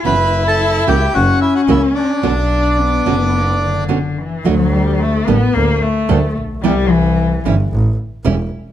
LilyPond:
<<
  \new Staff \with { instrumentName = "Bandoneon" } { \time 4/4 \key b \minor \tempo 4 = 110 <b' b''>8. <a' a''>8. <g' g''>8 <fis' fis''>8 <e' e''>16 <fis' fis''>16 <e' e''>8 <d' d''>8~ | <d' d''>2. r4 | \key d \major r1 | r1 | }
  \new Staff \with { instrumentName = "Nylon-string guitar" } { \time 4/4 \key b \minor <b, e b cis' fis'>8 r4 <cis e ais cis' fis'>8 r4 <cis e ais cis' fis'>8 r8 | <b, d b cis' fis'>8 r4 <b, d b cis' fis'>8 r4 <b, d b cis' fis'>8 r8 | \key d \major <d a d' fis'>8 r4 <d g bes d' a'>8 r4 <d g bes d' a'>8 r8 | <c e g b e'>8 r4 <e g cis' e'>8 r4 <e g cis' e'>8 r8 | }
  \new Staff \with { instrumentName = "Cello" } { \time 4/4 \key b \minor e'2 cis'2 | d'4 b4. d4 e8 | \key d \major fis8 g8 a8 b8 bes8 a4 r8 | g8 e4 r2 r8 | }
  \new Staff \with { instrumentName = "Double bass" } { \clef bass \time 4/4 \key b \minor fis,,4. cis,8 fis,,8 r8 cis,8 r8 | b,,4. fis,,4. r4 | \key d \major d,4. a,,8 d,8 r8 d,8 bes,,8 | c,4. g,,8 a,,8 r8 e,,8 r8 | }
>>